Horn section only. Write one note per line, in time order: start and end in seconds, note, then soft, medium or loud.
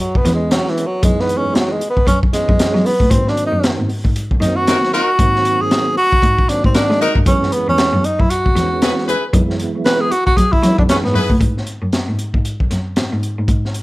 4.67 4.77 D#4 medium
4.67 4.77 F#4 medium
4.67 4.77 A#4 medium
4.93 5.10 D#4 medium
4.93 5.10 F#4 medium
4.93 5.10 A#4 loud
6.74 6.84 D#4 medium
6.74 6.84 F#4 medium
6.74 6.84 A#4 medium
7.01 7.17 D#4 loud
7.01 7.17 F#4 loud
7.01 7.17 A#4 loud
8.82 8.92 E4 medium
8.82 8.92 G#4 medium
8.82 8.92 B4 medium
9.08 9.24 E4 medium
9.08 9.24 G#4 medium
9.08 9.24 B4 loud
10.89 10.99 E4 medium
10.89 10.99 G#4 medium
10.89 10.99 B4 medium
11.14 11.31 E4 loud
11.14 11.31 G#4 medium
11.14 11.31 B4 loud